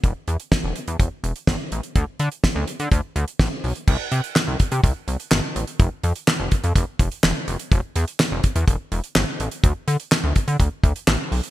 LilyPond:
<<
  \new Staff \with { instrumentName = "Analog synth bass" } { \clef bass \time 4/4 \key c \major \tempo 4 = 125 e,,16 r16 e,16 r8 e,,16 r16 e,16 e,,16 r16 e,,16 r16 g,,16 r16 a,,16 r16 | d,16 r16 d16 r8 d,16 r16 d16 d,16 r16 d,16 r16 a,,16 r16 b,,16 r16 | c,16 r16 c16 r8 c,16 r16 c16 c,16 r16 c,16 r16 g,,16 r16 a,,16 r16 | f,,16 r16 f,16 r8 f,,16 r16 f,16 f,,16 r16 f,,16 r16 e,,16 r16 f,,16 r16 |
e,,16 r16 e,16 r8 e,,16 r16 e,16 e,,16 r16 e,,16 r16 g,,16 r16 a,,16 r16 | d,16 r16 d16 r8 d,16 r16 d16 d,16 r16 d,16 r16 a,,16 r16 b,,16 r16 | }
  \new DrumStaff \with { instrumentName = "Drums" } \drummode { \time 4/4 <hh bd>8 hh16 hh16 <bd sn>8 hh16 hh16 <hh bd>8 hh16 hh16 <bd sn>8 hh16 hh16 | <hh bd>8 hh16 hh16 <bd sn>8 hh16 hh16 <hh bd>8 hh16 hh16 <bd sn>8 hho16 hh16 | <cymc bd>8 hh16 hh16 <hc sn>8 <hh bd>16 hh16 <hh bd>8 hh16 hh16 <hc sn>8 hh16 hh16 | <hh bd>8 hh16 hh16 <hc sn>8 <hh bd>16 hh16 <hh bd>8 <hh bd>16 hh16 <hc sn>8 hh16 hh16 |
<hh bd>8 hh16 hh16 <hc sn>8 <hh bd>16 hh16 <hh bd>8 hh16 hh16 <hc sn>8 hh16 hh16 | <hh bd>8 hh16 hh16 <hc sn>8 <hh bd>16 hh16 <hh bd>8 <hh bd>16 hh16 <hc sn>8 hho16 hh16 | }
>>